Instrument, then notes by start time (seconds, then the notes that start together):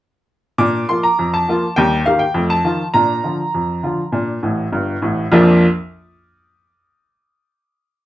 upright piano
0.58 A#2 D4 D6
0.89 F3 A#3 F4 C6
1.03 A#5
1.19 F2
1.34 A5
1.49 F3 A#3 F4
1.76 D#2 G3 G5
2.06 D#3 A#3 G4 F5
2.19 G5
2.34 F2 A3
2.50 A5
2.65 D#3 F3 F4
2.94 A#2 D4 A#5
3.24 D3 F3 F4
3.54 F2
3.83 D3 F3 F4
4.12 A#2 D4
4.43 A1 A2
4.72 G1 G2
5.02 A1 A2
5.32 A#1 F2 F3 A#3 D4 F4